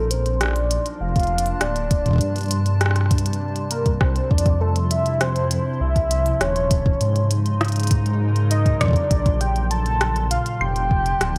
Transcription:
Already playing: detuned saw bass A#1, ambient pad F3, soft synth lead A4, synth texture C6
0.11 ambient pad A#3, soft synth lead C5, closed hi-hat
0.26 closed hi-hat
0.32 ambient pad D4
0.41 soft synth lead D5, cross-stick, closed hi-hat
0.43 cross-stick
0.46 cross-stick
0.48 cross-stick
0.51 cross-stick
0.53 cross-stick, closed hi-hat
0.59 ambient pad A5
0.71 closed hi-hat
0.86 closed hi-hat
1.01 detuned saw bass F1, soft synth lead F5
1.16 kick, closed hi-hat
1.20 closed hi-hat
1.23 closed hi-hat
1.27 closed hi-hat
1.38 closed hi-hat
1.46 closed hi-hat
1.61 detuned saw bass D1, soft synth lead D5, cross-stick, closed hi-hat
1.76 closed hi-hat
1.91 ambient pad C3, kick, closed hi-hat
2.06 kick, closed hi-hat
2.08 kick
2.11 kick
2.13 kick
2.16 kick
2.18 detuned saw bass G2, kick, closed hi-hat
2.34 ambient pad G3, closed hi-hat
2.38 closed hi-hat
2.41 closed hi-hat
2.43 closed hi-hat
2.46 closed hi-hat
2.48 closed hi-hat
2.51 closed hi-hat
2.66 closed hi-hat
2.81 cross-stick, closed hi-hat
2.86 cross-stick
2.91 cross-stick
2.96 cross-stick, closed hi-hat
3.01 cross-stick
3.06 cross-stick
3.11 kick, closed hi-hat
3.18 closed hi-hat
3.26 closed hi-hat
3.33 closed hi-hat
3.56 closed hi-hat
3.71 soft synth lead A#4, closed hi-hat
3.86 kick, closed hi-hat
4.01 detuned saw bass C2, soft synth lead C5, kick, cross-stick
4.16 closed hi-hat
4.31 detuned saw bass F2, soft synth lead D5, kick
4.38 ambient pad F3, closed hi-hat
4.46 ambient pad E4, kick, closed hi-hat
4.61 soft synth lead A4
4.76 closed hi-hat
4.91 soft synth lead E5, closed hi-hat
5.06 closed hi-hat
5.21 soft synth lead C5, cross-stick, closed hi-hat
5.36 closed hi-hat
5.51 closed hi-hat
5.81 detuned saw bass C2, soft synth lead E5
5.96 kick, closed hi-hat
6.11 closed hi-hat
6.26 closed hi-hat
6.41 detuned saw bass D#1, soft synth lead C#5, cross-stick, closed hi-hat
6.56 closed hi-hat
6.71 ambient pad C#3, kick, closed hi-hat
6.86 ambient pad D#4, kick
7.01 detuned saw bass G#2, closed hi-hat
7.16 closed hi-hat
7.31 ambient pad F#3, closed hi-hat
7.45 ambient pad A#4, closed hi-hat
7.61 cross-stick, closed hi-hat
7.65 closed hi-hat
7.68 closed hi-hat
7.72 closed hi-hat
7.76 closed hi-hat
7.80 closed hi-hat
7.83 closed hi-hat
7.87 kick, closed hi-hat
7.91 closed hi-hat
8.06 closed hi-hat
8.36 closed hi-hat
8.51 soft synth lead D#5, closed hi-hat
8.66 kick, closed hi-hat
8.81 detuned saw bass F2, soft synth lead D5, kick, cross-stick, closed hi-hat
8.83 kick
8.86 kick
8.88 kick
8.91 kick
8.93 kick, closed hi-hat
9.11 detuned saw bass A#1, ambient pad A#2, kick, closed hi-hat
9.26 kick, closed hi-hat
9.41 soft synth lead G5, closed hi-hat
9.46 ambient pad F3
9.56 closed hi-hat
9.71 soft synth lead A5, closed hi-hat
9.86 closed hi-hat
10.01 ambient pad A5, cross-stick, closed hi-hat
10.16 ambient pad D4, closed hi-hat
10.31 soft synth lead F5, closed hi-hat
10.46 closed hi-hat
10.61 detuned saw bass F1, soft synth lead G5, claves
10.76 closed hi-hat
10.91 kick
11.06 closed hi-hat
11.21 detuned saw bass D1, cross-stick, closed hi-hat

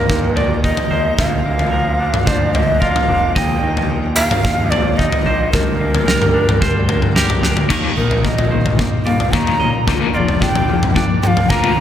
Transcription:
Already playing: clean electric guitar D#2 D#3 A#3 A#4, ambient pad F3 A#3 D#4 A#4, shakuhachi A#4
0.10 picked electric bass D#2, clean electric guitar A#2, kick
0.36 clean electric guitar D#3 D5, shakuhachi D5, floor tom
0.64 clean electric guitar D#4, shakuhachi D#5, kick
0.77 floor tom
0.91 picked electric bass D#2, clean electric guitar A#3 C5
1.18 picked electric bass D2, clean electric guitar A#2, ambient pad D4, shakuhachi F5, kick, floor tom
1.45 picked electric bass D2, clean electric guitar A#3
1.59 floor tom
1.72 clean electric guitar F3 A#4
2.00 clean electric guitar D4
2.14 floor tom, mid tom
2.26 picked electric bass D2, clean electric guitar F3 C5, shakuhachi D5, kick
2.54 clean electric guitar A#3, shakuhachi D#5, floor tom
2.80 clean electric guitar F4 A#4, shakuhachi F5, kick
2.96 floor tom
3.08 picked electric bass F1, clean electric guitar D4
3.35 clean electric guitar D#2 D#5, picked electric bass D#2, ambient pad D#4, shakuhachi G5, kick, floor tom
3.63 picked electric bass D#2, clean electric guitar D#3
3.77 floor tom
3.90 clean electric guitar A#2
4.16 clean electric guitar A#3 A#4, shakuhachi F5
4.31 floor tom, mid tom
4.44 picked electric bass D#2, clean electric guitar A#2, kick
4.70 clean electric guitar D#3 D5, shakuhachi D5, floor tom
4.97 clean electric guitar D#4, shakuhachi D#5, kick
5.12 floor tom
5.26 picked electric bass A#1, clean electric guitar A#3 C5
5.52 picked electric bass D2, clean electric guitar G2, ambient pad F3 D4 G4, shakuhachi A#4, kick, floor tom
5.80 picked electric bass D2, clean electric guitar A#3
5.95 floor tom
6.07 clean electric guitar G3 A#4, snare
6.22 mid tom
6.34 clean electric guitar D4
6.49 floor tom, mid tom
6.62 picked electric bass D2, clean electric guitar G3 C5, kick
6.89 clean electric guitar A#3, floor tom
7.02 mid tom
7.16 clean electric guitar G4 A#4, snare
7.30 floor tom
7.43 picked electric bass D2, clean electric guitar D4, snare
7.57 floor tom
7.69 overdriven electric guitar D#2 A#2 D#3, picked electric bass D#2, clean electric guitar D#2 A#4, ambient pad F3 A#3 D#4 A#4, kick, floor tom, crash
7.97 picked electric bass A#1, overdriven electric guitar D#2 A#2, clean electric guitar D#4, shakuhachi A#4
8.11 floor tom
8.24 overdriven electric guitar D#2 A#2, clean electric guitar A#3, shakuhachi D#5, kick
8.38 floor tom
8.51 overdriven electric guitar D#2 A#2, clean electric guitar D#3 C5
8.66 floor tom, mid tom
8.79 overdriven electric guitar D#2 A#2, clean electric guitar A#3, kick
9.05 overdriven electric guitar D#2 A#2, clean electric guitar A#2 D5, shakuhachi F5, mid tom
9.20 floor tom
9.32 overdriven electric guitar D#2 A#2 D#3, picked electric bass D#2, clean electric guitar D#3, shakuhachi A#5, kick
9.47 floor tom
9.60 picked electric bass C#2, overdriven electric guitar D#2 A#2, clean electric guitar A#2 D#5
9.87 picked electric bass D2, overdriven electric guitar A#2 F3 A#3, clean electric guitar A#2, ambient pad D4, kick, floor tom
10.14 picked electric bass F1, overdriven electric guitar A#2 F3, clean electric guitar F4 D5, shakuhachi D5 D#5
10.28 floor tom
10.41 overdriven electric guitar A#2 F3, clean electric guitar D4, shakuhachi G5, kick
10.55 floor tom
10.69 overdriven electric guitar A#2 F3, clean electric guitar A#3
10.83 floor tom, mid tom
10.95 overdriven electric guitar A#2 F3, clean electric guitar D4 D5, kick
11.23 overdriven electric guitar A#2 F3, clean electric guitar F3, shakuhachi G5, mid tom
11.27 shakuhachi F5
11.37 floor tom
11.50 picked electric bass D2, overdriven electric guitar A#2 F3 A#3, clean electric guitar A#3 A#4, shakuhachi A#5, kick
11.64 floor tom
11.77 overdriven electric guitar A#2, picked electric bass D3

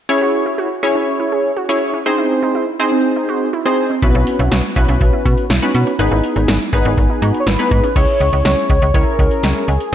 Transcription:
0.09 analog polysynth C#4 E4 G#4 C#5, synth pluck E4
0.21 synth pluck F#4
0.46 synth pluck E4
0.58 synth pluck F#4
0.83 analog polysynth C#4 E4 G#4 C#5, synth pluck E4
0.95 synth pluck C#4
1.20 synth pluck E4
1.32 synth pluck G#4
1.57 synth pluck F#4
1.69 analog polysynth C#4 E4 G#4 C#5, synth pluck E4
1.94 synth pluck C#4
2.06 analog polysynth C4 D#4 G#4 C5, synth pluck D#4
2.18 synth pluck E4
2.43 synth pluck D#4
2.55 synth pluck E4
2.80 analog polysynth C4 D#4 G#4 C5, synth pluck D#4
2.92 synth pluck C4
3.16 synth pluck D#4
3.29 synth pluck F#4
3.53 synth pluck E4
3.66 analog polysynth C4 D#4 G#4 C5, synth pluck D#4
3.90 synth pluck C4
4.02 fm bass B1, analog polysynth B3 C#4 F#4 B4, synth pluck E4, kick, closed hi-hat
4.15 fm bass B1, synth pluck F#4
4.27 closed hi-hat
4.39 fm bass B1, synth pluck E4, closed hi-hat
4.51 fm bass B1, synth pluck F#4, snare, closed hi-hat
4.76 fm bass B1, analog polysynth B3 C#4 F#4 B4, synth pluck E4, kick, closed hi-hat
4.88 fm bass B1, synth pluck C#4, closed hi-hat
5.01 fm bass B1, kick, closed hi-hat
5.13 synth pluck E4
5.25 fm bass B2, synth pluck F#4, kick, closed hi-hat
5.38 closed hi-hat
5.50 fm bass B1, synth pluck E4, snare, closed hi-hat
5.62 analog polysynth B3 C#4 F#4 B4, synth pluck D#4
5.74 fm bass B2, closed hi-hat
5.87 synth pluck C#4, closed hi-hat
5.99 fm bass G#1, analog polysynth B3 D#4 G#4 B4, synth pluck D#4, closed hi-hat
6.11 fm bass G#1, synth pluck E4
6.24 closed hi-hat
6.36 fm bass G#1, synth pluck D#4, closed hi-hat
6.48 fm bass G#1, synth pluck E4, snare, closed hi-hat
6.73 fm bass G#1, analog polysynth B3 D#4 G#4 B4, synth pluck D#4, kick, closed hi-hat
6.85 fm bass G#1, synth pluck B3, closed hi-hat
6.97 fm bass G#1, kick, closed hi-hat
7.10 synth pluck D#4
7.22 fm bass G#2, synth pluck F#4, closed hi-hat
7.34 closed hi-hat
7.40 analog synth lead C#5
7.47 fm bass G#1, synth pluck E4, analog synth lead B4, snare, closed hi-hat
7.59 analog polysynth B3 D#4 G#4 B4, synth pluck D#4
7.71 fm bass G#2, kick, closed hi-hat
7.84 synth pluck C#4, closed hi-hat
7.96 fm bass C#2, analog polysynth C#4 E4 G#4 C#5, analog synth lead C#5, kick, closed hi-hat, crash
8.20 fm bass C#2, closed hi-hat
8.33 fm bass C#2, closed hi-hat
8.45 fm bass C#2, analog synth lead C#5, snare, closed hi-hat
8.69 fm bass C#2, kick, closed hi-hat
8.82 fm bass C#2, closed hi-hat
8.94 fm bass C#2, analog polysynth C#4 E4 G#4 C#5, analog synth lead A#4, kick, closed hi-hat
9.19 fm bass C#2, kick, closed hi-hat
9.31 closed hi-hat
9.43 fm bass C#2, snare, closed hi-hat
9.68 fm bass C#2, analog synth lead G#4, closed hi-hat
9.80 closed hi-hat

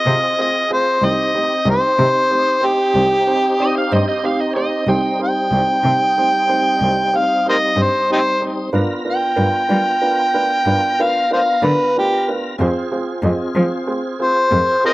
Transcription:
Already playing: tonewheel organ C4 F4 G#4, harmonica D#5
0.06 cello C3, upright piano C4 F4 G#4 C5
0.39 upright piano C4 F4 G#4 C5, harmonica D#5
0.70 upright piano C4 F4 G#4 C5, harmonica C5
1.02 cello C2, upright piano C4 D#4 G4 C5, tonewheel organ C4 D#4 G4, harmonica D#5
1.34 upright piano C4 D#4 G4 C5
1.66 cello C2, upright piano C4 D#4 G4 C5, harmonica C5
1.99 cello C3, upright piano C4 D#4 G4 C5
2.30 upright piano C4 D#4 G4 C5
2.61 upright piano C4 D#4 G4 C5
2.66 harmonica G4
2.95 cello C2, upright piano C4 D#4 G4 C5
3.27 upright piano C4 D#4 G4 C5
3.59 upright piano C4 D#4 G4 D5, electric slide guitar D#5
3.78 electric slide guitar F5
3.92 cello G2, upright piano C4 D#4 G4 C5, electric slide guitar D#5
4.09 electric slide guitar D#5
4.23 upright piano C4 D#4 G4 C5, electric slide guitar F5
4.40 electric slide guitar D#5
4.56 upright piano C4 D#4 G4 C5, electric slide guitar D#5
4.87 cello C2, tonewheel organ G3 C4 D#4, upright piano C4 D#4 G4 C5, electric slide guitar G5
5.19 upright piano C4 D#4 G4 C5
5.24 harmonica G5
5.52 cello C2, upright piano C4 D#4 G4 C5
5.84 cello C3, upright piano C4 D#4 G4 C5
6.17 upright piano C4 D#4 G4 C5
6.49 upright piano C4 D#4 G4 C5
6.80 cello C2, upright piano C4 D#4 G4 C5
7.13 upright piano C4 D#4 G4 C5, harmonica F5
7.46 upright piano C4 D#4 G4 C5, harmonica A#4 C5 D#5
7.76 cello G2, upright piano C4 D#4 G4 C5
7.82 harmonica C5
8.10 upright piano C4 D#4 G4 C5, harmonica D#4 G4 C5
8.42 upright piano C4 D#4 G4 C5
8.73 cello G2, tonewheel organ B3 F4 A#5, upright piano D4 F4 A#4 B4
9.05 upright piano D4 F4 A#4 B4
9.10 harmonica G5
9.36 cello G2, upright piano D4 F4 A#4 B4
9.69 cello G3, upright piano D4 F4 A#4 B4
10.01 upright piano D4 F4 A#4 B4
10.34 upright piano D4 F4 A#4 B4
10.66 cello G2, upright piano D4 F4 A#4 B4
10.99 upright piano D4 F4 A#4 B4, harmonica F5
11.31 upright piano D4 F4 A#4 B4, harmonica C5 F5
11.62 cello D3, upright piano D4 F4 A#4 B4, harmonica B4
11.96 upright piano D4 F4 A#4 B4, harmonica G4
12.28 upright piano D4 F4 A#4 B4
12.58 cello F2, tonewheel organ C4 F4 G#4, upright piano C4 F4 G#4 C5
12.92 upright piano C4 F4 G#4 C5
13.23 cello F2, upright piano C4 F4 G#4 D#5
13.55 cello F3, upright piano C4 F4 G#4 C5
13.87 upright piano C4 F4 G#4 C5
14.20 upright piano C4 F4 G#4 C5, harmonica C5
14.51 cello F2, upright piano C4 F4 G#4 A#4
14.84 upright piano C4 F4 G#4 C5, harmonica A#4 C5 D#5

